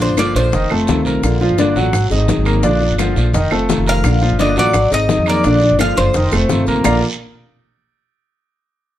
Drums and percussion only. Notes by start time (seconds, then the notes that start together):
0.00 high bongo
0.17 high bongo, short guiro, claves, maracas
0.35 high bongo, short guiro, maracas
0.52 high bongo, long guiro, maracas
0.70 high bongo, claves
0.87 high bongo, low bongo, short guiro, maracas
1.05 short guiro, maracas
1.23 high bongo, long guiro, claves, maracas
1.41 high bongo
1.58 high bongo, short guiro, maracas
1.76 high bongo, short guiro, maracas
1.93 high bongo, long guiro, claves, maracas
2.11 high bongo, maracas
2.28 high bongo, low bongo, short guiro, maracas
2.45 short guiro, claves, maracas
2.63 high bongo, long guiro, maracas
2.81 high bongo
2.98 high bongo, short guiro, claves, maracas
3.16 high bongo, short guiro, maracas
3.34 high bongo, long guiro, maracas
3.51 high bongo, claves
3.69 high bongo, low bongo, short guiro, maracas
3.86 short guiro, maracas
4.04 high bongo, long guiro, claves, maracas
4.22 high bongo
4.39 high bongo, short guiro, maracas
4.56 high bongo, short guiro, maracas
4.74 high bongo, long guiro, claves, maracas
4.92 high bongo, maracas
5.09 high bongo, low bongo, short guiro, maracas
5.26 short guiro, claves, maracas
5.44 high bongo, long guiro, maracas
5.62 high bongo
5.79 high bongo, short guiro, claves, maracas
5.97 high bongo, short guiro, maracas
6.14 high bongo, long guiro, maracas
6.32 high bongo, claves, maracas
6.49 high bongo, low bongo, short guiro, maracas
6.67 short guiro, maracas
6.84 low bongo, long guiro, claves, maracas